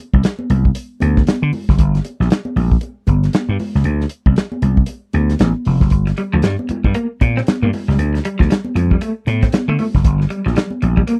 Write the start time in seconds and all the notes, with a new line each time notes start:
0.14 C2, kick, high conga
0.23 snare, closed hi-hat, muted conga
0.39 high conga
0.50 C2, closed hi-hat, low conga
0.65 kick
0.75 closed hi-hat
1.00 D2, closed hi-hat, high conga
1.17 kick, snare
1.27 snare, closed hi-hat, high conga
1.42 D3
1.53 open hi-hat, muted conga, low conga
1.69 F#1, kick, snare
1.79 G1, kick, closed hi-hat
1.95 snare, closed hi-hat
2.05 closed hi-hat, muted conga
2.20 A#1, snare, high conga
2.30 snare, closed hi-hat, muted conga
2.45 high conga
2.56 A#1, open hi-hat, muted conga, low conga
2.72 kick
2.81 closed hi-hat, muted conga
3.07 G1, kick, closed hi-hat, high conga
3.24 snare, closed hi-hat
3.33 snare, closed hi-hat, high conga
3.49 G2
3.59 open hi-hat, low conga
3.75 C#2, snare
3.84 D2, closed hi-hat
4.01 snare
4.09 closed hi-hat
4.26 C2, kick, high conga
4.36 snare, closed hi-hat, muted conga
4.52 high conga
4.62 C2, closed hi-hat, low conga
4.77 kick
4.86 closed hi-hat, muted conga
5.13 D2, closed hi-hat, muted conga, high conga
5.30 snare, closed hi-hat
5.39 A1, snare, closed hi-hat, muted conga, high conga
5.65 F1, open hi-hat, low conga
5.81 F#1, kick, snare
5.90 G1, kick, closed hi-hat, muted conga
6.07 muted clean electric guitar stroke, snare, closed hi-hat
6.17 G3, closed hi-hat, muted conga
6.33 D2 F3, high conga
6.42 G2 G3, snare, closed hi-hat, muted conga
6.59 high conga
6.69 muted clean electric guitar stroke, muted slap bass stroke, closed hi-hat, low conga
6.84 G2 G3, kick
6.94 A#3, closed hi-hat
7.21 A#2, muted clean electric guitar stroke, kick, closed hi-hat, muted conga, high conga
7.37 C4, snare
7.47 snare, closed hi-hat, muted conga, high conga
7.62 G2 A#3
7.73 muted clean electric guitar stroke, open hi-hat, low conga
7.88 C#2 G3, snare
7.98 D2, closed hi-hat, muted conga
8.14 muted clean electric guitar stroke, snare, closed hi-hat
8.25 G3, closed hi-hat
8.39 D2 F3, kick, snare, high conga
8.50 G3, snare, closed hi-hat, muted conga
8.64 high conga
8.75 F2, muted clean electric guitar stroke, closed hi-hat, muted conga, low conga
8.91 G3, kick
9.01 A3, closed hi-hat, muted conga
9.27 A2, muted clean electric guitar stroke, closed hi-hat, high conga
9.43 C4, kick, snare, closed hi-hat
9.52 muted clean electric guitar stroke, snare, closed hi-hat, high conga
9.68 D3 A3
9.79 A3, open hi-hat, low conga
9.95 F#1, kick, snare
10.05 G1, kick, closed hi-hat, muted conga
10.20 muted clean electric guitar stroke, snare
10.30 G3, closed hi-hat, muted conga
10.46 A#1 F3, snare, high conga
10.56 G3, snare, closed hi-hat, muted conga
10.70 high conga
10.82 A#1, muted clean electric guitar stroke, closed hi-hat, low conga
10.97 G3, kick
11.07 A#3, closed hi-hat